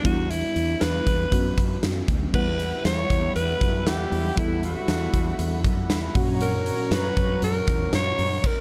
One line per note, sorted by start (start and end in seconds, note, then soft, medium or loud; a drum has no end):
0.03 0.41 E2 medium
0.03 1.29 G3 medium
0.03 1.29 B3 medium
0.03 1.29 D4 medium
0.03 1.30 E4 medium
0.03 0.32 F#4 medium
0.03 kick loud
0.03 closed hi-hat medium
0.31 0.83 E4 medium
0.31 closed hi-hat medium
0.56 0.74 E2 medium
0.56 closed hi-hat medium
0.81 1.00 E2 loud
0.81 1.83 B4 loud
0.81 snare loud
0.81 closed hi-hat medium
1.07 1.25 E2 medium
1.07 kick medium
1.07 closed hi-hat medium
1.31 1.50 F#2 medium
1.31 2.31 F#3 medium
1.31 2.31 B3 medium
1.31 2.32 C#4 medium
1.31 2.32 F#4 medium
1.31 kick medium
1.31 closed hi-hat medium
1.58 1.76 F#2 medium
1.58 kick medium
1.58 closed hi-hat medium
1.83 2.01 F#2 medium
1.83 snare loud
1.83 closed hi-hat medium
2.08 2.26 D2 medium
2.08 kick medium
2.08 closed hi-hat medium
2.33 2.70 E2 medium
2.33 6.11 G3 medium
2.33 4.33 G3 medium
2.33 4.33 B3 medium
2.33 4.33 E4 medium
2.33 2.81 B4 loud
2.33 6.11 E5 medium
2.33 8.39 F#5 medium
2.33 4.34 F#5 medium
2.33 6.11 B5 medium
2.33 kick loud
2.33 crash medium
2.59 closed hi-hat medium
2.85 3.03 E2 medium
2.85 3.32 C#5 loud
2.85 snare loud
2.85 closed hi-hat medium
3.10 3.28 E2 medium
3.10 kick medium
3.10 closed hi-hat medium
3.36 3.54 E2 medium
3.36 3.89 B4 loud
3.36 closed hi-hat medium
3.61 3.87 F#2 medium
3.61 kick medium
3.61 closed hi-hat medium
3.87 4.05 E2 loud
3.87 4.40 G4 medium
3.87 snare loud
3.87 closed hi-hat medium
4.12 4.30 E2 medium
4.12 open hi-hat medium
4.36 4.74 E2 loud
4.36 6.11 G3 medium
4.36 6.11 B3 medium
4.36 6.12 E4 medium
4.36 4.63 E4 medium
4.36 6.12 A4 medium
4.36 kick loud
4.36 closed hi-hat medium
4.63 5.61 F#4 medium
4.63 closed hi-hat medium
4.88 5.06 E2 loud
4.88 snare loud
4.88 closed hi-hat medium
5.13 5.32 E2 medium
5.13 kick medium
5.13 closed hi-hat medium
5.39 5.64 E2 medium
5.39 closed hi-hat medium
5.64 5.89 F#2 medium
5.64 kick medium
5.64 closed hi-hat medium
5.89 6.08 E2 medium
5.89 6.14 B5 medium
5.89 snare loud
5.89 closed hi-hat medium
6.15 6.70 F#2 medium
6.15 8.14 A#2 medium
6.15 8.14 F#3 medium
6.15 8.15 C#4 medium
6.15 8.15 F#4 medium
6.15 8.41 C#5 medium
6.15 6.39 F#5 medium
6.15 8.41 A#5 medium
6.15 8.41 C#6 medium
6.15 kick loud
6.15 open hi-hat medium
6.41 6.94 A#4 medium
6.41 closed hi-hat medium
6.66 closed hi-hat medium
6.91 7.09 F#2 loud
6.91 7.43 B4 loud
6.91 snare loud
6.91 closed hi-hat medium
7.17 7.35 F#2 medium
7.17 kick medium
7.17 closed hi-hat medium
7.42 7.60 F#2 loud
7.42 7.90 A#4 medium
7.42 closed hi-hat medium
7.67 7.86 E2 medium
7.67 kick medium
7.67 closed hi-hat medium
7.93 8.11 F#2 medium
7.93 8.48 C#5 loud
7.93 snare loud
7.93 closed hi-hat medium
8.19 8.37 F#2 medium
8.19 open hi-hat medium
8.44 8.61 A#4 loud
8.44 kick loud
8.44 crash medium